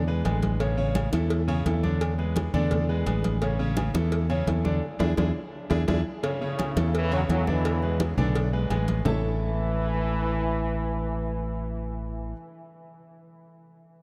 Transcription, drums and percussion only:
0.08 high conga
0.25 cowbell, high conga, low timbale, low agogo
0.43 cowbell, high conga
0.60 cowbell, high conga, low agogo
0.78 high conga
0.95 cowbell, high conga, low agogo
1.13 cowbell, high conga, low agogo
1.30 cowbell, high conga
1.48 high conga, low agogo
1.66 cowbell, high conga, low timbale, low agogo
1.84 high conga
2.01 cowbell, high conga, low agogo
2.19 high conga
2.36 cowbell, high conga, low agogo
2.54 high conga, low conga, low agogo
2.71 cowbell, high conga, low conga, low agogo
2.89 high conga
3.06 cowbell, high conga, low agogo
3.24 cowbell, high conga
3.42 cowbell, high conga, low agogo
3.60 high conga
3.77 cowbell, high conga, low agogo
3.94 cowbell, high conga, low agogo
4.12 cowbell, high conga
4.30 high conga, low agogo
4.47 cowbell, high conga, low timbale, low agogo
4.65 high conga
5.00 cowbell, high conga, high timbale
5.17 cowbell, high conga, high timbale
5.70 cowbell, high conga, high timbale
5.88 cowbell, high conga, high timbale
6.23 cowbell, high conga, low agogo
6.42 high conga
6.59 cowbell, high conga, low agogo
6.77 cowbell, high conga, low agogo
6.94 cowbell, high conga
7.12 high conga, low agogo
7.29 cowbell, high conga, low agogo
7.47 high conga
7.65 cowbell, low agogo
7.83 high conga
8.00 cowbell, high conga, low agogo
8.18 high conga, low conga, low agogo
8.35 cowbell, high conga, low agogo
8.53 high conga
8.70 cowbell, high conga, low agogo
8.88 cowbell, high conga
9.05 low bongo, low conga, low timbale

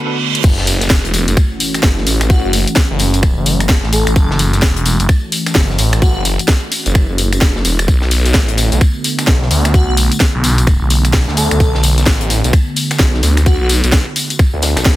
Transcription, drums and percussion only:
0.35 closed hi-hat
0.44 kick, closed hi-hat, crash, tambourine
0.58 snare
0.67 open hi-hat, tambourine
0.81 snare, closed hi-hat, tambourine
0.90 kick, snare, closed hi-hat, tambourine
1.05 closed hi-hat
1.14 open hi-hat, tambourine
1.28 closed hi-hat, tambourine
1.37 finger snap, kick, closed hi-hat, tambourine
1.60 open hi-hat, tambourine
1.74 finger snap, snare, closed hi-hat, tambourine
1.83 kick, snare, closed hi-hat, tambourine
1.98 snare
2.07 open hi-hat, tambourine
2.21 finger snap, snare, closed hi-hat, tambourine
2.30 kick, closed hi-hat, tambourine
2.53 open hi-hat, tambourine
2.68 closed hi-hat, tambourine
2.75 kick, snare, closed hi-hat, tambourine
2.99 open hi-hat, tambourine
3.14 closed hi-hat, tambourine
3.23 finger snap, kick, closed hi-hat, tambourine
3.46 open hi-hat, tambourine
3.60 finger snap, closed hi-hat, tambourine
3.69 kick, snare, closed hi-hat, tambourine
3.83 snare
3.92 open hi-hat, tambourine
4.07 finger snap, closed hi-hat, tambourine
4.16 kick, closed hi-hat, tambourine
4.31 snare
4.39 open hi-hat, tambourine
4.53 snare, closed hi-hat, tambourine
4.62 kick, snare, closed hi-hat, tambourine
4.77 closed hi-hat
4.85 open hi-hat, tambourine
5.00 closed hi-hat, tambourine
5.09 finger snap, kick, closed hi-hat, tambourine
5.32 open hi-hat, tambourine
5.46 finger snap, snare, closed hi-hat, tambourine
5.55 kick, snare, closed hi-hat, tambourine
5.70 snare
5.78 open hi-hat, tambourine
5.93 finger snap, snare, closed hi-hat, tambourine
6.02 kick, closed hi-hat, tambourine
6.25 open hi-hat, tambourine
6.39 closed hi-hat, tambourine
6.48 kick, snare, closed hi-hat, tambourine
6.72 open hi-hat, tambourine
6.86 closed hi-hat, tambourine
6.95 finger snap, kick, closed hi-hat, tambourine
7.18 open hi-hat, tambourine
7.33 finger snap, closed hi-hat, tambourine
7.41 kick, snare, closed hi-hat, tambourine
7.56 snare
7.65 open hi-hat, tambourine
7.79 finger snap, closed hi-hat, tambourine
7.88 kick, closed hi-hat, tambourine
8.02 snare
8.11 open hi-hat, tambourine
8.26 snare, closed hi-hat, tambourine
8.34 kick, snare, closed hi-hat, tambourine
8.48 closed hi-hat
8.57 open hi-hat, tambourine
8.72 closed hi-hat, tambourine
8.81 finger snap, kick, closed hi-hat, tambourine
9.04 open hi-hat, tambourine
9.18 finger snap, snare, closed hi-hat, tambourine
9.27 kick, snare, closed hi-hat, tambourine
9.42 snare
9.51 open hi-hat, tambourine
9.65 finger snap, snare, closed hi-hat, tambourine
9.74 kick, closed hi-hat, tambourine
9.97 open hi-hat, tambourine
10.12 closed hi-hat, tambourine
10.20 kick, snare, closed hi-hat, tambourine
10.44 open hi-hat, tambourine
10.58 closed hi-hat, tambourine
10.67 finger snap, kick, closed hi-hat, tambourine
10.90 open hi-hat, tambourine
11.05 finger snap, closed hi-hat, tambourine
11.13 kick, snare, closed hi-hat, tambourine
11.14 snare, tambourine
11.28 snare
11.37 open hi-hat, tambourine
11.51 finger snap, closed hi-hat, tambourine
11.60 kick, closed hi-hat, tambourine
11.75 snare
11.83 open hi-hat, tambourine
11.98 snare, closed hi-hat, tambourine
12.06 kick, snare, closed hi-hat, tambourine
12.21 closed hi-hat
12.30 open hi-hat, tambourine
12.44 closed hi-hat, tambourine
12.53 finger snap, kick, closed hi-hat, tambourine
12.76 open hi-hat, tambourine
12.91 finger snap, snare, closed hi-hat, tambourine
12.99 kick, snare, closed hi-hat, tambourine
13.14 snare
13.23 open hi-hat, tambourine
13.37 finger snap, snare, closed hi-hat, tambourine
13.46 kick, closed hi-hat, tambourine
13.69 open hi-hat, tambourine
13.84 closed hi-hat, tambourine
13.92 kick, snare, closed hi-hat, tambourine
14.16 open hi-hat, tambourine
14.30 closed hi-hat, tambourine
14.39 finger snap, kick, closed hi-hat, tambourine
14.62 snare, open hi-hat, tambourine
14.77 finger snap, snare, closed hi-hat, tambourine
14.85 kick, snare, closed hi-hat

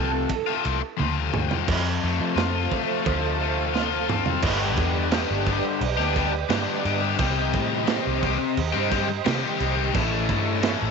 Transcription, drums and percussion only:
0.29 kick, ride
0.65 ride
0.99 high tom
1.34 mid tom
1.51 floor tom
1.68 kick, crash
2.37 snare, crash
2.72 kick
3.06 kick, crash
3.75 snare
4.09 mid tom
4.26 floor tom
4.42 kick, crash
4.77 kick, crash
5.11 snare, crash
5.46 kick, crash
5.81 crash
5.99 snare
6.16 kick, crash
6.50 snare, crash
6.85 crash
7.18 kick, crash
7.53 kick, crash
7.87 snare, crash
8.23 kick, crash
8.57 crash
8.91 kick, crash
9.26 snare, crash
9.60 crash
9.94 kick, crash
10.29 kick, crash
10.63 snare, crash

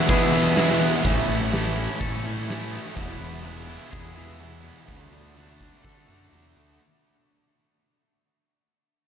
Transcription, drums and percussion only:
0.09 kick, open hi-hat
0.33 open hi-hat
0.56 snare, open hi-hat
0.81 open hi-hat
1.05 kick, open hi-hat
1.29 open hi-hat
1.52 snare, open hi-hat
1.76 open hi-hat
2.01 kick, open hi-hat
2.25 open hi-hat
2.49 snare, open hi-hat
2.73 open hi-hat
2.96 kick, open hi-hat
3.21 open hi-hat
3.46 open hi-hat
3.70 open hi-hat
3.93 kick, open hi-hat
4.17 open hi-hat
4.41 open hi-hat
4.65 open hi-hat
4.88 kick, open hi-hat
5.13 open hi-hat
5.37 open hi-hat
5.60 kick, open hi-hat
5.84 kick, open hi-hat
6.09 open hi-hat
6.33 open hi-hat
6.57 open hi-hat

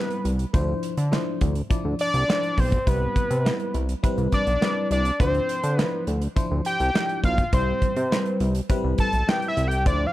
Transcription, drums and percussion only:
0.10 closed hi-hat
0.25 closed hi-hat
0.39 closed hi-hat
0.54 kick, closed hi-hat
0.83 closed hi-hat
0.97 closed hi-hat
1.13 snare, clap
1.41 kick, closed hi-hat
1.55 closed hi-hat
1.71 kick, closed hi-hat
1.99 closed hi-hat
2.14 closed hi-hat
2.30 snare, clap
2.43 closed hi-hat
2.58 kick, open hi-hat
2.72 kick, closed hi-hat
2.87 kick, closed hi-hat
3.16 kick, closed hi-hat
3.31 closed hi-hat
3.46 snare, clap
3.60 closed hi-hat
3.74 closed hi-hat
3.89 closed hi-hat
4.04 kick, closed hi-hat
4.18 closed hi-hat
4.32 kick, closed hi-hat
4.47 closed hi-hat
4.62 snare, clap
4.91 closed hi-hat
5.05 closed hi-hat
5.20 kick, closed hi-hat
5.34 closed hi-hat
5.49 closed hi-hat
5.63 closed hi-hat
5.79 snare, clap
6.07 closed hi-hat
6.22 closed hi-hat
6.37 kick, closed hi-hat
6.65 closed hi-hat
6.80 closed hi-hat
6.95 snare, clap
7.09 closed hi-hat
7.24 kick, closed hi-hat
7.38 kick, closed hi-hat
7.53 kick, closed hi-hat
7.82 kick, closed hi-hat
7.96 closed hi-hat
8.12 snare, clap
8.26 closed hi-hat
8.40 closed hi-hat
8.55 closed hi-hat
8.70 kick, closed hi-hat
8.98 kick, closed hi-hat
9.13 closed hi-hat
9.29 snare, clap
9.42 closed hi-hat
9.57 closed hi-hat
9.71 closed hi-hat
9.86 kick, closed hi-hat

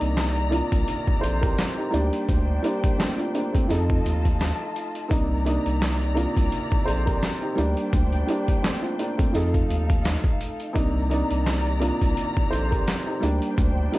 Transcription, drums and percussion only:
0.01 closed hi-hat
0.16 snare, clap, closed hi-hat, shaker
0.37 closed hi-hat
0.52 closed hi-hat, shaker
0.72 kick, closed hi-hat
0.87 closed hi-hat, shaker
1.07 kick
1.22 closed hi-hat, shaker
1.43 kick, closed hi-hat
1.56 snare, clap, closed hi-hat, shaker
1.93 closed hi-hat, shaker
2.13 closed hi-hat
2.28 kick, closed hi-hat, shaker
2.64 closed hi-hat, shaker
2.84 kick, closed hi-hat
2.99 snare, clap, closed hi-hat, shaker
3.19 closed hi-hat
3.34 closed hi-hat, shaker
3.55 kick, closed hi-hat
3.69 snare, closed hi-hat, shaker
3.90 kick
4.05 closed hi-hat, shaker
4.25 kick, closed hi-hat
4.39 snare, clap, closed hi-hat, shaker
4.75 closed hi-hat, shaker
4.95 closed hi-hat
5.10 kick, closed hi-hat, shaker
5.46 closed hi-hat, shaker
5.66 closed hi-hat
5.81 snare, clap, closed hi-hat, shaker
6.02 closed hi-hat
6.16 closed hi-hat, shaker
6.37 kick, closed hi-hat
6.51 closed hi-hat, shaker
6.72 kick
6.87 closed hi-hat, shaker
7.07 kick, closed hi-hat
7.21 snare, clap, closed hi-hat, shaker
7.58 closed hi-hat, shaker
7.77 closed hi-hat
7.93 kick, closed hi-hat, shaker
8.13 closed hi-hat
8.29 closed hi-hat, shaker
8.48 kick, closed hi-hat
8.63 snare, clap, closed hi-hat, shaker
8.84 closed hi-hat
8.99 closed hi-hat, shaker
9.19 kick, closed hi-hat
9.34 snare, closed hi-hat, shaker
9.54 kick, closed hi-hat
9.69 closed hi-hat, shaker
9.90 kick, closed hi-hat
10.03 snare, clap, closed hi-hat, shaker
10.24 kick, closed hi-hat
10.40 closed hi-hat, shaker
10.60 closed hi-hat
10.75 kick, closed hi-hat, shaker
11.11 closed hi-hat, shaker
11.31 closed hi-hat
11.46 snare, clap, closed hi-hat, shaker
11.66 closed hi-hat
11.81 closed hi-hat, shaker
12.01 kick, closed hi-hat
12.17 closed hi-hat, shaker
12.37 kick
12.52 closed hi-hat, shaker
12.72 kick, closed hi-hat
12.86 snare, clap, closed hi-hat, shaker
13.22 closed hi-hat, shaker
13.42 closed hi-hat
13.57 kick, closed hi-hat, shaker
13.93 closed hi-hat, shaker

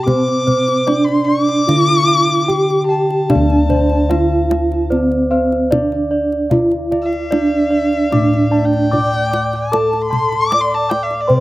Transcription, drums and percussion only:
0.08 kendang low
0.28 kendang slap
0.48 kendang low
0.68 kendang slap
0.88 kendang high
1.08 kendang slap
1.49 kendang slap
1.69 kendang high, kendang low
1.89 kendang slap
2.30 kendang slap
2.50 kendang low
2.70 kendang slap
3.10 kendang slap
3.30 kendang high, kendang low
3.50 kendang slap
3.70 kendang low
3.90 kendang slap
4.11 kendang high
4.51 kendang high
4.72 kendang slap
4.92 kendang low
5.12 kendang slap
5.52 kendang slap
5.72 kendang high, kendang low
5.92 kendang slap
6.32 kendang slap
6.51 kendang low
6.71 kendang slap
6.92 kendang low
7.13 kendang slap
7.32 kendang high
7.93 kendang slap
8.12 kendang high, kendang low
8.33 kendang slap
8.74 kendang slap
8.93 kendang low
9.14 kendang slap
9.33 kendang high
9.53 kendang slap
9.73 kendang high, kendang low
9.93 kendang slap
10.13 kendang low
10.32 kendang slap
10.52 kendang high
10.91 kendang high
11.11 kendang slap
11.30 kendang low

